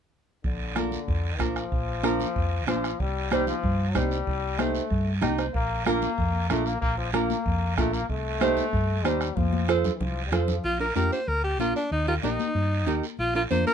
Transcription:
0.44 A#1 D3, bombo low, long guiro
0.75 D4 F4 A#4, bombo rim, high conga, short guiro
0.92 high conga, short guiro
1.08 F2, bombo low, long guiro
1.39 A#1 F3 D4 F4 A#4, bombo low, bombo rim, high conga, short guiro
1.56 bombo rim, short guiro
1.72 A#1, bombo low, long guiro
2.03 D4 F4 A#4, bombo rim, high conga, short guiro
2.20 high conga, short guiro
2.36 F2, bombo low, long guiro
2.67 A#1 F3 D4 F4 C5, bombo rim, high conga, short guiro
2.84 bombo rim, short guiro
3.00 C2 G3, bombo low, long guiro
3.31 G3 D#4 G4 C5, bombo rim, high conga, short guiro
3.47 F3, high conga, short guiro
3.64 G2, bombo low, long guiro
3.89 F#3
3.95 C2 G3 D#4 G4 C5, bombo low, bombo rim, high conga, short guiro
4.11 short guiro
4.27 C2, bombo low, long guiro
4.59 A3 D#4 G4 C5, bombo rim, high conga, short guiro
4.75 short guiro
4.90 G2, bombo low, long guiro
5.21 C2 D#4 G4 D#5 G5, bombo rim, high conga, short guiro
5.38 C5, bombo rim, short guiro
5.54 A#1 A#3, bombo low, long guiro
5.86 A#3 D4 F4 A#4, bombo rim, high conga, short guiro
6.02 high conga, short guiro
6.18 F2, bombo low, long guiro
6.50 A#1 A3 D4 F4 A#4, bombo rim, high conga, short guiro
6.66 A#3, short guiro
6.81 A#1 A#3, bombo low, long guiro
6.98 F3
7.13 A#3 D4 F4 A#4, bombo rim, high conga, short guiro
7.30 high conga, short guiro
7.46 F2, bombo low, long guiro
7.77 A#1 A3 D4 F4 A#4, bombo low, bombo rim, high conga, short guiro
7.93 A#3, short guiro
8.09 C2 A3, bombo low, long guiro
8.41 D#4 G4 C5, bombo rim, high conga, short guiro
8.57 high conga, short guiro
8.73 G2, bombo low, long guiro
9.04 D#2 G3 D#4 G4 C5, bombo rim, high conga, short guiro
9.21 bombo rim, short guiro
9.37 F2 F3, bombo low, high conga, long guiro
9.53 high conga
9.68 F4 A4 C5, bombo rim, short guiro
9.84 low conga, short guiro
9.93 E3
10.00 C2 F3, bombo low, low conga, long guiro
10.26 G3
10.32 F2 F3 F4 A4 C5, bombo rim, low conga, short guiro
10.48 low conga, short guiro
10.64 A#1 F4, long guiro
10.80 D4 F4 A#4
10.96 F2 D4 F4 G4 A#4, high conga, short guiro
11.12 C5, short guiro
11.28 D2 A#4, long guiro
11.44 G4
11.60 A#1 D4 F4 A#4, high conga, short guiro
11.76 D4, short guiro
11.91 D#2 D#4, long guiro
12.07 D#4 F4 G4 A#4
12.23 A#1 D#4 G4 A#4, high conga, short guiro
12.40 high conga, short guiro
12.55 G2, long guiro
12.87 D#2 D#4 G4 A#4, high conga, short guiro
13.03 short guiro
13.19 A#1 F4, long guiro
13.34 D4 F4 A#4
13.50 F2 D4 F4 A#4 C5, high conga, short guiro
13.67 A#4, high conga, short guiro

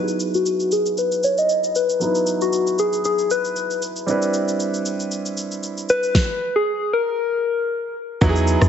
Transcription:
Already playing: F#3 B3 D#4 E4 B4
0.03 G#4
0.08 shaker
0.20 shaker
0.34 F#4, shaker
0.46 shaker
0.60 shaker
0.72 G#4, shaker
0.86 shaker
0.98 B4, shaker
1.12 shaker
1.23 C#5, shaker
1.38 D#5, shaker
1.49 shaker
1.64 shaker
1.75 B4, shaker
1.89 shaker
1.99 F#3 B3 D#4 E4 B4, shaker
2.15 shaker
2.27 shaker
2.41 F#4, shaker
2.53 shaker
2.67 shaker
2.79 G#4, shaker
2.93 shaker
3.04 G#4, shaker
3.19 shaker
3.30 B4, shaker
3.45 shaker
3.56 shaker
3.71 shaker
3.82 shaker
3.96 shaker
4.06 G3 C4 D4 E4 B4, shaker
4.22 shaker
4.34 shaker
4.48 shaker
4.60 shaker
4.74 shaker
4.86 shaker
5.00 shaker
5.11 shaker
5.26 shaker
5.37 shaker
5.52 shaker
5.63 shaker
5.78 shaker
5.89 B4, shaker
6.03 shaker
6.15 kick, snare
6.56 G#4
6.93 A#4
8.21 E2 F#3 B3 D#4 E4 F#4, kick, shaker
8.29 G#4
8.36 shaker
8.47 shaker
8.62 E2, cross-stick, shaker

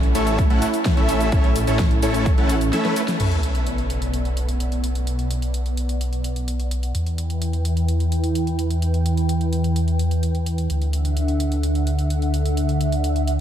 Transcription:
Already playing: A1 A3 C#4 E4
0.03 closed hi-hat
0.15 A1 A3 C#4 E4 A4 C#5, open hi-hat, shaker
0.27 closed hi-hat, shaker
0.39 kick, closed hi-hat, shaker
0.50 A1 A3 C#4 E4 A4 F#5, closed hi-hat
0.62 open hi-hat, shaker
0.74 closed hi-hat, shaker
0.85 kick, snare, closed hi-hat, shaker
0.97 A1 A3 C#4 E4 A4 E5, closed hi-hat
1.09 open hi-hat, shaker
1.20 closed hi-hat, shaker
1.32 A1 A3 C#4 E4 A4 C#5, kick, closed hi-hat, shaker
1.44 closed hi-hat
1.56 open hi-hat, shaker
1.67 A1 A3 C#4 E4 A4 C#5, closed hi-hat, shaker
1.79 kick, snare, closed hi-hat, shaker
1.91 closed hi-hat
2.03 A1 A3 C#4 E4 A4 C#5, open hi-hat, shaker
2.14 closed hi-hat, shaker
2.26 kick, closed hi-hat, shaker
2.38 A1 A3 C#4 E4 A4 F#5, closed hi-hat
2.49 open hi-hat, shaker
2.61 closed hi-hat, shaker
2.73 A3 C#4 E4 A4 E5, snare, closed hi-hat, shaker
2.85 A3 C#4 E4 A4 B4, snare, closed hi-hat
2.96 open hi-hat, shaker
3.08 snare, closed hi-hat, shaker
3.20 B1 B3 B4 D5 F#5, closed hi-hat, crash, sub drop
3.32 closed hi-hat
3.43 closed hi-hat
3.55 closed hi-hat
3.67 closed hi-hat
3.78 closed hi-hat
3.90 closed hi-hat
4.02 closed hi-hat
4.14 closed hi-hat
4.25 closed hi-hat
4.37 closed hi-hat
4.49 closed hi-hat
4.60 closed hi-hat
4.72 closed hi-hat
4.84 closed hi-hat
4.95 closed hi-hat
5.07 closed hi-hat
5.19 closed hi-hat
5.31 closed hi-hat
5.42 closed hi-hat
5.54 closed hi-hat
5.66 closed hi-hat
5.77 closed hi-hat
5.89 closed hi-hat
6.01 closed hi-hat
6.13 closed hi-hat
6.24 closed hi-hat
6.36 closed hi-hat
6.48 closed hi-hat
6.60 closed hi-hat
6.71 closed hi-hat
6.83 closed hi-hat
6.95 E2 E3 E4 B4 G5, closed hi-hat
7.07 closed hi-hat
7.18 closed hi-hat
7.30 closed hi-hat
7.42 closed hi-hat
7.53 closed hi-hat
7.65 closed hi-hat
7.77 closed hi-hat
7.88 closed hi-hat
8.00 closed hi-hat
8.12 closed hi-hat
8.24 closed hi-hat
8.35 closed hi-hat
8.47 closed hi-hat
8.59 closed hi-hat
8.71 closed hi-hat
8.82 closed hi-hat
8.94 closed hi-hat
9.06 closed hi-hat
9.17 closed hi-hat
9.29 closed hi-hat
9.41 closed hi-hat
9.53 closed hi-hat
9.64 closed hi-hat
9.76 closed hi-hat
9.88 closed hi-hat
9.99 closed hi-hat
10.11 closed hi-hat
10.23 closed hi-hat
10.35 closed hi-hat
10.46 closed hi-hat
10.58 closed hi-hat
10.70 D2 D3 D4 E5 F#5, closed hi-hat
10.82 closed hi-hat
10.93 closed hi-hat
11.05 closed hi-hat
11.17 closed hi-hat
11.28 closed hi-hat
11.40 closed hi-hat
11.52 closed hi-hat
11.63 closed hi-hat
11.75 closed hi-hat
11.87 closed hi-hat
11.99 closed hi-hat
12.10 closed hi-hat
12.22 closed hi-hat
12.34 closed hi-hat
12.46 closed hi-hat
12.57 closed hi-hat
12.69 closed hi-hat
12.81 closed hi-hat
12.92 closed hi-hat
13.04 closed hi-hat
13.16 closed hi-hat
13.28 closed hi-hat

